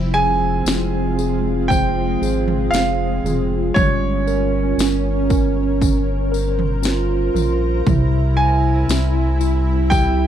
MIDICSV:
0, 0, Header, 1, 7, 480
1, 0, Start_track
1, 0, Key_signature, -4, "minor"
1, 0, Tempo, 1027397
1, 1755, Time_signature, 4, 2, 24, 8
1, 4798, End_track
2, 0, Start_track
2, 0, Title_t, "Grand piano"
2, 0, Program_c, 0, 0
2, 64, Note_on_c, 0, 80, 114
2, 774, Note_off_c, 0, 80, 0
2, 786, Note_on_c, 0, 79, 89
2, 1264, Note_on_c, 0, 77, 90
2, 1286, Note_off_c, 0, 79, 0
2, 1749, Note_on_c, 0, 73, 86
2, 1764, Note_off_c, 0, 77, 0
2, 2212, Note_off_c, 0, 73, 0
2, 3909, Note_on_c, 0, 80, 96
2, 4625, Note_on_c, 0, 79, 96
2, 4649, Note_off_c, 0, 80, 0
2, 4798, Note_off_c, 0, 79, 0
2, 4798, End_track
3, 0, Start_track
3, 0, Title_t, "Ambient pad"
3, 0, Program_c, 1, 92
3, 0, Note_on_c, 1, 56, 73
3, 0, Note_on_c, 1, 65, 90
3, 1734, Note_off_c, 1, 65, 0
3, 1737, Note_off_c, 1, 56, 0
3, 1752, Note_on_c, 1, 61, 77
3, 1752, Note_on_c, 1, 70, 97
3, 2701, Note_off_c, 1, 61, 0
3, 2715, Note_on_c, 1, 72, 75
3, 3651, Note_off_c, 1, 70, 0
3, 3663, Note_off_c, 1, 72, 0
3, 3683, Note_on_c, 1, 64, 91
3, 3684, Note_on_c, 1, 48, 81
3, 4798, Note_off_c, 1, 48, 0
3, 4798, Note_off_c, 1, 64, 0
3, 4798, End_track
4, 0, Start_track
4, 0, Title_t, "Tine electric piano"
4, 0, Program_c, 2, 4
4, 0, Control_c, 2, 64, 127
4, 0, Note_on_c, 2, 53, 68
4, 66, Note_on_c, 2, 68, 61
4, 307, Note_on_c, 2, 60, 53
4, 548, Note_off_c, 2, 68, 0
4, 554, Note_on_c, 2, 68, 51
4, 798, Note_on_c, 2, 72, 59
4, 1032, Note_off_c, 2, 68, 0
4, 1037, Note_on_c, 2, 68, 52
4, 1256, Note_off_c, 2, 60, 0
4, 1280, Note_on_c, 2, 60, 51
4, 1513, Note_off_c, 2, 68, 0
4, 1519, Note_on_c, 2, 68, 51
4, 1736, Note_off_c, 2, 53, 0
4, 1739, Note_off_c, 2, 72, 0
4, 1743, Note_off_c, 2, 60, 0
4, 1750, Note_off_c, 2, 68, 0
4, 1756, Note_on_c, 2, 55, 67
4, 1760, Control_c, 2, 64, 0
4, 1844, Control_c, 2, 64, 127
4, 1997, Note_on_c, 2, 70, 59
4, 2237, Note_on_c, 2, 61, 55
4, 2469, Note_off_c, 2, 70, 0
4, 2475, Note_on_c, 2, 70, 54
4, 2710, Note_off_c, 2, 61, 0
4, 2715, Note_on_c, 2, 61, 65
4, 2947, Note_off_c, 2, 70, 0
4, 2952, Note_on_c, 2, 70, 57
4, 3184, Note_off_c, 2, 61, 0
4, 3190, Note_on_c, 2, 61, 53
4, 3426, Note_off_c, 2, 70, 0
4, 3431, Note_on_c, 2, 70, 55
4, 3653, Note_off_c, 2, 55, 0
4, 3656, Note_off_c, 2, 61, 0
4, 3664, Note_off_c, 2, 70, 0
4, 3674, Note_on_c, 2, 48, 72
4, 3678, Control_c, 2, 64, 0
4, 3757, Control_c, 2, 64, 127
4, 3913, Note_on_c, 2, 64, 59
4, 4155, Note_on_c, 2, 55, 56
4, 4388, Note_off_c, 2, 64, 0
4, 4393, Note_on_c, 2, 64, 56
4, 4633, Note_on_c, 2, 67, 59
4, 4798, Note_off_c, 2, 48, 0
4, 4798, Note_off_c, 2, 55, 0
4, 4798, Note_off_c, 2, 64, 0
4, 4798, Note_off_c, 2, 67, 0
4, 4798, End_track
5, 0, Start_track
5, 0, Title_t, "French horn section"
5, 0, Program_c, 3, 60
5, 0, Note_on_c, 3, 60, 80
5, 1736, Note_off_c, 3, 60, 0
5, 1760, Note_on_c, 3, 61, 94
5, 3069, Note_off_c, 3, 61, 0
5, 3190, Note_on_c, 3, 65, 94
5, 3652, Note_off_c, 3, 65, 0
5, 3672, Note_on_c, 3, 64, 102
5, 4798, Note_off_c, 3, 64, 0
5, 4798, End_track
6, 0, Start_track
6, 0, Title_t, "Sub bass"
6, 0, Program_c, 4, 38
6, 0, Note_on_c, 4, 29, 111
6, 289, Note_off_c, 4, 29, 0
6, 302, Note_on_c, 4, 29, 88
6, 1013, Note_off_c, 4, 29, 0
6, 1034, Note_on_c, 4, 32, 88
6, 1258, Note_off_c, 4, 32, 0
6, 1270, Note_on_c, 4, 29, 92
6, 1496, Note_off_c, 4, 29, 0
6, 1510, Note_on_c, 4, 29, 92
6, 1735, Note_off_c, 4, 29, 0
6, 1758, Note_on_c, 4, 31, 100
6, 2216, Note_off_c, 4, 31, 0
6, 2229, Note_on_c, 4, 31, 106
6, 3410, Note_off_c, 4, 31, 0
6, 3431, Note_on_c, 4, 34, 89
6, 3655, Note_off_c, 4, 34, 0
6, 3675, Note_on_c, 4, 36, 103
6, 4134, Note_off_c, 4, 36, 0
6, 4149, Note_on_c, 4, 36, 108
6, 4798, Note_off_c, 4, 36, 0
6, 4798, End_track
7, 0, Start_track
7, 0, Title_t, "Drums"
7, 310, Note_on_c, 9, 54, 77
7, 316, Note_on_c, 9, 38, 110
7, 356, Note_off_c, 9, 54, 0
7, 363, Note_off_c, 9, 38, 0
7, 554, Note_on_c, 9, 54, 48
7, 601, Note_off_c, 9, 54, 0
7, 795, Note_on_c, 9, 36, 71
7, 795, Note_on_c, 9, 43, 55
7, 800, Note_on_c, 9, 54, 54
7, 842, Note_off_c, 9, 36, 0
7, 842, Note_off_c, 9, 43, 0
7, 847, Note_off_c, 9, 54, 0
7, 1041, Note_on_c, 9, 54, 45
7, 1087, Note_off_c, 9, 54, 0
7, 1158, Note_on_c, 9, 43, 58
7, 1205, Note_off_c, 9, 43, 0
7, 1278, Note_on_c, 9, 54, 78
7, 1283, Note_on_c, 9, 38, 97
7, 1325, Note_off_c, 9, 54, 0
7, 1330, Note_off_c, 9, 38, 0
7, 1522, Note_on_c, 9, 43, 62
7, 1523, Note_on_c, 9, 54, 43
7, 1568, Note_off_c, 9, 43, 0
7, 1569, Note_off_c, 9, 54, 0
7, 1757, Note_on_c, 9, 43, 98
7, 1758, Note_on_c, 9, 36, 106
7, 1762, Note_on_c, 9, 54, 28
7, 1804, Note_off_c, 9, 43, 0
7, 1805, Note_off_c, 9, 36, 0
7, 1809, Note_off_c, 9, 54, 0
7, 1997, Note_on_c, 9, 54, 29
7, 2044, Note_off_c, 9, 54, 0
7, 2238, Note_on_c, 9, 54, 78
7, 2245, Note_on_c, 9, 38, 99
7, 2285, Note_off_c, 9, 54, 0
7, 2291, Note_off_c, 9, 38, 0
7, 2477, Note_on_c, 9, 54, 48
7, 2478, Note_on_c, 9, 36, 88
7, 2523, Note_off_c, 9, 54, 0
7, 2524, Note_off_c, 9, 36, 0
7, 2717, Note_on_c, 9, 36, 78
7, 2717, Note_on_c, 9, 43, 57
7, 2719, Note_on_c, 9, 54, 61
7, 2764, Note_off_c, 9, 36, 0
7, 2764, Note_off_c, 9, 43, 0
7, 2766, Note_off_c, 9, 54, 0
7, 2962, Note_on_c, 9, 54, 45
7, 3009, Note_off_c, 9, 54, 0
7, 3078, Note_on_c, 9, 43, 63
7, 3124, Note_off_c, 9, 43, 0
7, 3192, Note_on_c, 9, 54, 81
7, 3202, Note_on_c, 9, 38, 90
7, 3239, Note_off_c, 9, 54, 0
7, 3249, Note_off_c, 9, 38, 0
7, 3437, Note_on_c, 9, 43, 62
7, 3440, Note_on_c, 9, 54, 46
7, 3484, Note_off_c, 9, 43, 0
7, 3487, Note_off_c, 9, 54, 0
7, 3675, Note_on_c, 9, 36, 106
7, 3676, Note_on_c, 9, 43, 105
7, 3678, Note_on_c, 9, 54, 29
7, 3721, Note_off_c, 9, 36, 0
7, 3722, Note_off_c, 9, 43, 0
7, 3724, Note_off_c, 9, 54, 0
7, 4155, Note_on_c, 9, 54, 75
7, 4161, Note_on_c, 9, 38, 108
7, 4202, Note_off_c, 9, 54, 0
7, 4207, Note_off_c, 9, 38, 0
7, 4395, Note_on_c, 9, 54, 55
7, 4442, Note_off_c, 9, 54, 0
7, 4631, Note_on_c, 9, 36, 76
7, 4632, Note_on_c, 9, 54, 55
7, 4633, Note_on_c, 9, 43, 57
7, 4678, Note_off_c, 9, 36, 0
7, 4679, Note_off_c, 9, 54, 0
7, 4680, Note_off_c, 9, 43, 0
7, 4798, End_track
0, 0, End_of_file